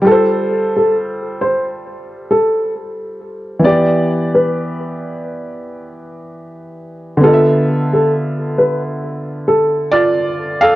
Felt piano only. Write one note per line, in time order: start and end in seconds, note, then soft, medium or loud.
0.02 3.58 G3 medium
0.02 3.60 F4 medium
0.08 3.61 A4 medium
0.08 3.63 C5 medium
3.59 7.16 E3 medium
3.59 7.18 B3 soft
3.66 7.19 G4 medium
3.66 7.21 D5 medium
7.17 10.74 D3 medium
7.17 10.76 B3 medium
7.24 9.91 F4 medium
7.24 7.32 D#5 medium
7.33 10.76 E5 medium
9.91 10.58 F4 medium
9.91 10.63 D5 medium
10.61 10.76 A4 medium
10.61 10.76 F5 loud